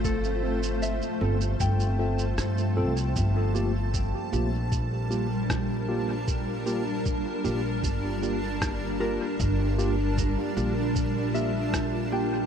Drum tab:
SH |xx-xxx-xxx-xxx-x|x-x-x-x-x-x-x---|x-x-x-x-x-x-x---|x-x-x-x-x-x-x---|
SD |------------r---|------------r---|------------r---|------------r---|
BD |o-------o-------|o---o---o---o---|o---o---o---o---|o---o---o---o---|